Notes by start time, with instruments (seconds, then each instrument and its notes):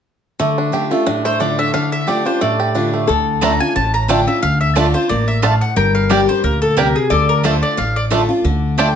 0.39 steel-string acoustic guitar D3, five-string banjo A3
0.58 five-string banjo D4
0.72 steel-string acoustic guitar D3 A3 D4 F4, five-string banjo G4
0.91 five-string banjo A3, steel-string acoustic guitar D4 F4
1.06 steel-string acoustic guitar A2, five-string banjo D4
1.25 five-string banjo A3, mandolin C5
1.40 steel-string acoustic guitar D3 A3 D4 F4, five-string banjo D4, mandolin D5
1.59 five-string banjo D4, mandolin E5
1.74 steel-string acoustic guitar D3, five-string banjo D4, mandolin F5
1.92 mandolin E5
2.07 steel-string acoustic guitar D3 A3 D4 F4, five-string banjo G4, mandolin D5
2.25 five-string banjo D4, steel-string acoustic guitar D4 F4, mandolin C5
2.41 steel-string acoustic guitar A2, five-string banjo A3, mandolin D5
2.60 five-string banjo G4
2.75 steel-string acoustic guitar D3 A3 D4 F4, five-string banjo D4
2.94 five-string banjo A3
3.07 upright bass D2, steel-string acoustic guitar D3, resonator guitar played with a steel bar A4
3.41 steel-string acoustic guitar D3 A3 D4 F4, mandolin A3 F4 D5 A5 A#5, five-string banjo A3 D4
3.60 steel-string acoustic guitar D4 F4, mandolin G#5
3.76 upright bass A1, steel-string acoustic guitar A2, mandolin A5
3.94 mandolin A#5
4.08 steel-string acoustic guitar D3 A3 D4 F4, mandolin A3 F4 D5 G5 A5, five-string banjo A3 D4
4.27 steel-string acoustic guitar D4 F4, mandolin E5
4.42 upright bass D2, steel-string acoustic guitar D3, mandolin F5
4.61 mandolin E5
4.75 steel-string acoustic guitar D3 A3 D4 F4, mandolin A3 F4 D5 A5, five-string banjo A3 D4
4.94 steel-string acoustic guitar D4 F4, mandolin C5
5.09 upright bass A1, steel-string acoustic guitar A#3, mandolin D5
5.28 mandolin E5
5.42 steel-string acoustic guitar A2, mandolin A3 F4 D5 F5 A5, five-string banjo A3 D4
5.61 mandolin F#5
5.76 upright bass G1, steel-string acoustic guitar G2, resonator guitar played with a steel bar A#4, mandolin G5
5.95 mandolin F5
6.09 steel-string acoustic guitar G3 A#3 D4 G4, five-string banjo G3 D4, mandolin A#3 G4 D5 G5
6.28 steel-string acoustic guitar D4 G4, mandolin C5
6.43 upright bass D2, steel-string acoustic guitar A#2, mandolin A#4
6.62 mandolin A4
6.77 steel-string acoustic guitar C3, five-string banjo G3 D4, mandolin A#3 G4 A#4 D5 G5
6.96 mandolin G#4
7.10 upright bass D2, steel-string acoustic guitar D3, mandolin A4, resonator guitar played with a steel bar D5
7.29 mandolin A#4
7.43 steel-string acoustic guitar D3 A3 D4 F4, mandolin A3 F4 C5 D5 A5, five-string banjo A3 D4
7.63 mandolin D5
7.77 upright bass A1, steel-string acoustic guitar A2, mandolin F5
7.96 mandolin D5
8.10 steel-string acoustic guitar D3 A3 D4 F4, mandolin A3 F4 D5 A5, five-string banjo A3 D4
8.29 steel-string acoustic guitar D4 F4
8.44 upright bass D2, steel-string acoustic guitar D3
8.78 steel-string acoustic guitar D3 A3 D4 F4, mandolin A3 F4 D5 G5 A5, five-string banjo A3 D4